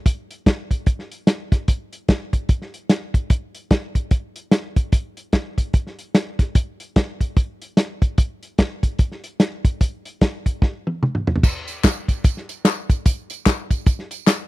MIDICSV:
0, 0, Header, 1, 2, 480
1, 0, Start_track
1, 0, Tempo, 405954
1, 67, Time_signature, 4, 2, 24, 8
1, 17118, End_track
2, 0, Start_track
2, 0, Title_t, "Drums"
2, 68, Note_on_c, 9, 36, 100
2, 70, Note_on_c, 9, 42, 93
2, 187, Note_off_c, 9, 36, 0
2, 189, Note_off_c, 9, 42, 0
2, 362, Note_on_c, 9, 42, 68
2, 480, Note_off_c, 9, 42, 0
2, 548, Note_on_c, 9, 36, 82
2, 548, Note_on_c, 9, 42, 80
2, 553, Note_on_c, 9, 38, 105
2, 666, Note_off_c, 9, 36, 0
2, 667, Note_off_c, 9, 42, 0
2, 671, Note_off_c, 9, 38, 0
2, 836, Note_on_c, 9, 36, 73
2, 840, Note_on_c, 9, 42, 62
2, 954, Note_off_c, 9, 36, 0
2, 958, Note_off_c, 9, 42, 0
2, 1021, Note_on_c, 9, 42, 66
2, 1025, Note_on_c, 9, 36, 94
2, 1140, Note_off_c, 9, 42, 0
2, 1143, Note_off_c, 9, 36, 0
2, 1171, Note_on_c, 9, 38, 29
2, 1290, Note_off_c, 9, 38, 0
2, 1319, Note_on_c, 9, 42, 65
2, 1437, Note_off_c, 9, 42, 0
2, 1502, Note_on_c, 9, 38, 112
2, 1503, Note_on_c, 9, 42, 96
2, 1620, Note_off_c, 9, 38, 0
2, 1621, Note_off_c, 9, 42, 0
2, 1797, Note_on_c, 9, 36, 93
2, 1797, Note_on_c, 9, 38, 28
2, 1798, Note_on_c, 9, 42, 59
2, 1915, Note_off_c, 9, 36, 0
2, 1915, Note_off_c, 9, 38, 0
2, 1916, Note_off_c, 9, 42, 0
2, 1986, Note_on_c, 9, 42, 100
2, 1989, Note_on_c, 9, 36, 97
2, 2104, Note_off_c, 9, 42, 0
2, 2107, Note_off_c, 9, 36, 0
2, 2277, Note_on_c, 9, 42, 69
2, 2396, Note_off_c, 9, 42, 0
2, 2465, Note_on_c, 9, 42, 77
2, 2467, Note_on_c, 9, 36, 88
2, 2469, Note_on_c, 9, 38, 113
2, 2583, Note_off_c, 9, 42, 0
2, 2586, Note_off_c, 9, 36, 0
2, 2588, Note_off_c, 9, 38, 0
2, 2756, Note_on_c, 9, 36, 77
2, 2757, Note_on_c, 9, 42, 66
2, 2874, Note_off_c, 9, 36, 0
2, 2875, Note_off_c, 9, 42, 0
2, 2942, Note_on_c, 9, 42, 62
2, 2946, Note_on_c, 9, 36, 100
2, 3060, Note_off_c, 9, 42, 0
2, 3064, Note_off_c, 9, 36, 0
2, 3094, Note_on_c, 9, 38, 33
2, 3212, Note_off_c, 9, 38, 0
2, 3239, Note_on_c, 9, 42, 65
2, 3357, Note_off_c, 9, 42, 0
2, 3423, Note_on_c, 9, 38, 105
2, 3424, Note_on_c, 9, 42, 89
2, 3541, Note_off_c, 9, 38, 0
2, 3542, Note_off_c, 9, 42, 0
2, 3715, Note_on_c, 9, 36, 82
2, 3720, Note_on_c, 9, 42, 57
2, 3833, Note_off_c, 9, 36, 0
2, 3838, Note_off_c, 9, 42, 0
2, 3902, Note_on_c, 9, 42, 96
2, 3904, Note_on_c, 9, 36, 101
2, 4020, Note_off_c, 9, 42, 0
2, 4023, Note_off_c, 9, 36, 0
2, 4193, Note_on_c, 9, 42, 66
2, 4311, Note_off_c, 9, 42, 0
2, 4382, Note_on_c, 9, 42, 73
2, 4384, Note_on_c, 9, 36, 86
2, 4386, Note_on_c, 9, 38, 109
2, 4500, Note_off_c, 9, 42, 0
2, 4502, Note_off_c, 9, 36, 0
2, 4505, Note_off_c, 9, 38, 0
2, 4672, Note_on_c, 9, 36, 72
2, 4673, Note_on_c, 9, 42, 59
2, 4790, Note_off_c, 9, 36, 0
2, 4791, Note_off_c, 9, 42, 0
2, 4857, Note_on_c, 9, 42, 73
2, 4861, Note_on_c, 9, 36, 102
2, 4976, Note_off_c, 9, 42, 0
2, 4979, Note_off_c, 9, 36, 0
2, 5152, Note_on_c, 9, 42, 69
2, 5270, Note_off_c, 9, 42, 0
2, 5338, Note_on_c, 9, 38, 105
2, 5339, Note_on_c, 9, 42, 91
2, 5456, Note_off_c, 9, 38, 0
2, 5457, Note_off_c, 9, 42, 0
2, 5632, Note_on_c, 9, 36, 88
2, 5633, Note_on_c, 9, 42, 64
2, 5751, Note_off_c, 9, 36, 0
2, 5751, Note_off_c, 9, 42, 0
2, 5820, Note_on_c, 9, 42, 92
2, 5824, Note_on_c, 9, 36, 108
2, 5938, Note_off_c, 9, 42, 0
2, 5942, Note_off_c, 9, 36, 0
2, 6113, Note_on_c, 9, 42, 60
2, 6231, Note_off_c, 9, 42, 0
2, 6297, Note_on_c, 9, 42, 79
2, 6302, Note_on_c, 9, 38, 113
2, 6304, Note_on_c, 9, 36, 80
2, 6416, Note_off_c, 9, 42, 0
2, 6420, Note_off_c, 9, 38, 0
2, 6423, Note_off_c, 9, 36, 0
2, 6594, Note_on_c, 9, 36, 75
2, 6598, Note_on_c, 9, 42, 69
2, 6712, Note_off_c, 9, 36, 0
2, 6716, Note_off_c, 9, 42, 0
2, 6781, Note_on_c, 9, 42, 69
2, 6785, Note_on_c, 9, 36, 101
2, 6899, Note_off_c, 9, 42, 0
2, 6903, Note_off_c, 9, 36, 0
2, 6936, Note_on_c, 9, 38, 31
2, 7055, Note_off_c, 9, 38, 0
2, 7078, Note_on_c, 9, 42, 64
2, 7197, Note_off_c, 9, 42, 0
2, 7266, Note_on_c, 9, 38, 109
2, 7267, Note_on_c, 9, 42, 89
2, 7385, Note_off_c, 9, 38, 0
2, 7386, Note_off_c, 9, 42, 0
2, 7556, Note_on_c, 9, 36, 87
2, 7556, Note_on_c, 9, 38, 30
2, 7558, Note_on_c, 9, 42, 58
2, 7675, Note_off_c, 9, 36, 0
2, 7675, Note_off_c, 9, 38, 0
2, 7676, Note_off_c, 9, 42, 0
2, 7746, Note_on_c, 9, 42, 87
2, 7748, Note_on_c, 9, 36, 110
2, 7864, Note_off_c, 9, 42, 0
2, 7866, Note_off_c, 9, 36, 0
2, 8041, Note_on_c, 9, 42, 69
2, 8159, Note_off_c, 9, 42, 0
2, 8230, Note_on_c, 9, 42, 77
2, 8231, Note_on_c, 9, 36, 86
2, 8234, Note_on_c, 9, 38, 114
2, 8348, Note_off_c, 9, 42, 0
2, 8349, Note_off_c, 9, 36, 0
2, 8352, Note_off_c, 9, 38, 0
2, 8520, Note_on_c, 9, 36, 68
2, 8523, Note_on_c, 9, 42, 65
2, 8638, Note_off_c, 9, 36, 0
2, 8641, Note_off_c, 9, 42, 0
2, 8709, Note_on_c, 9, 42, 69
2, 8710, Note_on_c, 9, 36, 108
2, 8827, Note_off_c, 9, 42, 0
2, 8828, Note_off_c, 9, 36, 0
2, 9005, Note_on_c, 9, 42, 69
2, 9123, Note_off_c, 9, 42, 0
2, 9187, Note_on_c, 9, 38, 100
2, 9188, Note_on_c, 9, 42, 96
2, 9305, Note_off_c, 9, 38, 0
2, 9306, Note_off_c, 9, 42, 0
2, 9481, Note_on_c, 9, 36, 88
2, 9483, Note_on_c, 9, 42, 60
2, 9599, Note_off_c, 9, 36, 0
2, 9602, Note_off_c, 9, 42, 0
2, 9669, Note_on_c, 9, 42, 90
2, 9673, Note_on_c, 9, 36, 106
2, 9787, Note_off_c, 9, 42, 0
2, 9791, Note_off_c, 9, 36, 0
2, 9963, Note_on_c, 9, 42, 61
2, 10081, Note_off_c, 9, 42, 0
2, 10148, Note_on_c, 9, 42, 80
2, 10152, Note_on_c, 9, 38, 116
2, 10154, Note_on_c, 9, 36, 81
2, 10266, Note_off_c, 9, 42, 0
2, 10271, Note_off_c, 9, 38, 0
2, 10272, Note_off_c, 9, 36, 0
2, 10441, Note_on_c, 9, 36, 75
2, 10443, Note_on_c, 9, 42, 58
2, 10559, Note_off_c, 9, 36, 0
2, 10561, Note_off_c, 9, 42, 0
2, 10625, Note_on_c, 9, 42, 68
2, 10631, Note_on_c, 9, 36, 102
2, 10744, Note_off_c, 9, 42, 0
2, 10750, Note_off_c, 9, 36, 0
2, 10779, Note_on_c, 9, 38, 30
2, 10897, Note_off_c, 9, 38, 0
2, 10922, Note_on_c, 9, 42, 72
2, 11040, Note_off_c, 9, 42, 0
2, 11111, Note_on_c, 9, 38, 110
2, 11112, Note_on_c, 9, 42, 89
2, 11230, Note_off_c, 9, 38, 0
2, 11231, Note_off_c, 9, 42, 0
2, 11405, Note_on_c, 9, 36, 93
2, 11409, Note_on_c, 9, 42, 65
2, 11523, Note_off_c, 9, 36, 0
2, 11527, Note_off_c, 9, 42, 0
2, 11596, Note_on_c, 9, 42, 91
2, 11597, Note_on_c, 9, 36, 95
2, 11715, Note_off_c, 9, 36, 0
2, 11715, Note_off_c, 9, 42, 0
2, 11888, Note_on_c, 9, 42, 72
2, 12006, Note_off_c, 9, 42, 0
2, 12075, Note_on_c, 9, 42, 77
2, 12078, Note_on_c, 9, 36, 80
2, 12080, Note_on_c, 9, 38, 114
2, 12193, Note_off_c, 9, 42, 0
2, 12196, Note_off_c, 9, 36, 0
2, 12198, Note_off_c, 9, 38, 0
2, 12367, Note_on_c, 9, 36, 71
2, 12370, Note_on_c, 9, 42, 66
2, 12485, Note_off_c, 9, 36, 0
2, 12488, Note_off_c, 9, 42, 0
2, 12556, Note_on_c, 9, 36, 104
2, 12561, Note_on_c, 9, 38, 48
2, 12674, Note_off_c, 9, 36, 0
2, 12679, Note_off_c, 9, 38, 0
2, 12852, Note_on_c, 9, 48, 63
2, 12970, Note_off_c, 9, 48, 0
2, 13038, Note_on_c, 9, 47, 83
2, 13156, Note_off_c, 9, 47, 0
2, 13182, Note_on_c, 9, 45, 64
2, 13301, Note_off_c, 9, 45, 0
2, 13330, Note_on_c, 9, 43, 91
2, 13427, Note_off_c, 9, 43, 0
2, 13427, Note_on_c, 9, 43, 84
2, 13520, Note_on_c, 9, 36, 113
2, 13521, Note_on_c, 9, 49, 102
2, 13525, Note_on_c, 9, 54, 78
2, 13545, Note_off_c, 9, 43, 0
2, 13638, Note_off_c, 9, 36, 0
2, 13639, Note_off_c, 9, 49, 0
2, 13643, Note_off_c, 9, 54, 0
2, 13805, Note_on_c, 9, 54, 62
2, 13814, Note_on_c, 9, 42, 68
2, 13923, Note_off_c, 9, 54, 0
2, 13932, Note_off_c, 9, 42, 0
2, 14000, Note_on_c, 9, 36, 97
2, 14001, Note_on_c, 9, 42, 85
2, 14005, Note_on_c, 9, 38, 127
2, 14006, Note_on_c, 9, 39, 89
2, 14006, Note_on_c, 9, 54, 101
2, 14119, Note_off_c, 9, 36, 0
2, 14119, Note_off_c, 9, 42, 0
2, 14123, Note_off_c, 9, 38, 0
2, 14124, Note_off_c, 9, 39, 0
2, 14124, Note_off_c, 9, 54, 0
2, 14288, Note_on_c, 9, 36, 75
2, 14291, Note_on_c, 9, 42, 71
2, 14292, Note_on_c, 9, 54, 45
2, 14406, Note_off_c, 9, 36, 0
2, 14410, Note_off_c, 9, 42, 0
2, 14410, Note_off_c, 9, 54, 0
2, 14475, Note_on_c, 9, 42, 81
2, 14478, Note_on_c, 9, 36, 114
2, 14485, Note_on_c, 9, 54, 64
2, 14593, Note_off_c, 9, 42, 0
2, 14596, Note_off_c, 9, 36, 0
2, 14603, Note_off_c, 9, 54, 0
2, 14627, Note_on_c, 9, 38, 33
2, 14745, Note_off_c, 9, 38, 0
2, 14769, Note_on_c, 9, 42, 71
2, 14769, Note_on_c, 9, 54, 53
2, 14887, Note_off_c, 9, 54, 0
2, 14888, Note_off_c, 9, 42, 0
2, 14954, Note_on_c, 9, 38, 103
2, 14955, Note_on_c, 9, 42, 94
2, 14969, Note_on_c, 9, 39, 95
2, 14969, Note_on_c, 9, 54, 91
2, 15072, Note_off_c, 9, 38, 0
2, 15073, Note_off_c, 9, 42, 0
2, 15088, Note_off_c, 9, 39, 0
2, 15088, Note_off_c, 9, 54, 0
2, 15247, Note_on_c, 9, 36, 93
2, 15249, Note_on_c, 9, 42, 59
2, 15266, Note_on_c, 9, 54, 53
2, 15365, Note_off_c, 9, 36, 0
2, 15367, Note_off_c, 9, 42, 0
2, 15384, Note_off_c, 9, 54, 0
2, 15437, Note_on_c, 9, 42, 106
2, 15439, Note_on_c, 9, 36, 108
2, 15446, Note_on_c, 9, 54, 88
2, 15556, Note_off_c, 9, 42, 0
2, 15558, Note_off_c, 9, 36, 0
2, 15564, Note_off_c, 9, 54, 0
2, 15724, Note_on_c, 9, 54, 59
2, 15730, Note_on_c, 9, 42, 74
2, 15842, Note_off_c, 9, 54, 0
2, 15848, Note_off_c, 9, 42, 0
2, 15914, Note_on_c, 9, 42, 93
2, 15918, Note_on_c, 9, 36, 100
2, 15918, Note_on_c, 9, 38, 120
2, 15921, Note_on_c, 9, 39, 99
2, 15921, Note_on_c, 9, 54, 88
2, 16032, Note_off_c, 9, 42, 0
2, 16036, Note_off_c, 9, 36, 0
2, 16036, Note_off_c, 9, 38, 0
2, 16039, Note_off_c, 9, 39, 0
2, 16039, Note_off_c, 9, 54, 0
2, 16205, Note_on_c, 9, 36, 82
2, 16207, Note_on_c, 9, 54, 47
2, 16208, Note_on_c, 9, 42, 70
2, 16323, Note_off_c, 9, 36, 0
2, 16325, Note_off_c, 9, 54, 0
2, 16326, Note_off_c, 9, 42, 0
2, 16390, Note_on_c, 9, 42, 74
2, 16394, Note_on_c, 9, 36, 115
2, 16401, Note_on_c, 9, 54, 64
2, 16508, Note_off_c, 9, 42, 0
2, 16513, Note_off_c, 9, 36, 0
2, 16519, Note_off_c, 9, 54, 0
2, 16540, Note_on_c, 9, 38, 37
2, 16659, Note_off_c, 9, 38, 0
2, 16683, Note_on_c, 9, 42, 74
2, 16688, Note_on_c, 9, 54, 52
2, 16801, Note_off_c, 9, 42, 0
2, 16807, Note_off_c, 9, 54, 0
2, 16873, Note_on_c, 9, 38, 121
2, 16874, Note_on_c, 9, 42, 103
2, 16879, Note_on_c, 9, 39, 93
2, 16879, Note_on_c, 9, 54, 94
2, 16991, Note_off_c, 9, 38, 0
2, 16992, Note_off_c, 9, 42, 0
2, 16997, Note_off_c, 9, 39, 0
2, 16997, Note_off_c, 9, 54, 0
2, 17118, End_track
0, 0, End_of_file